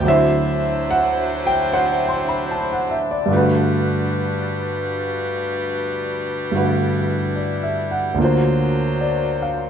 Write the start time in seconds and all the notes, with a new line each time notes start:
0.00 D2 D3
0.04 F#3 D4 E4 C5 E5
0.09 E4 C5
0.90 F#5
1.47 G5
1.73 C5 F#5
2.09 C6
2.29 B5
2.51 A5
2.72 F#5
2.91 E5
3.11 D5
3.26 G2 D3
3.31 G3 A3 F#4 B4
3.36 B4
6.52 G2 D3 A3 E4 F#4
6.57 B4
7.35 D5
7.63 E5
7.91 F#5
8.14 D2 D3
8.18 F#3 A#3 F4 A#4 C5
8.23 F#4 C5
9.01 D5
9.42 F5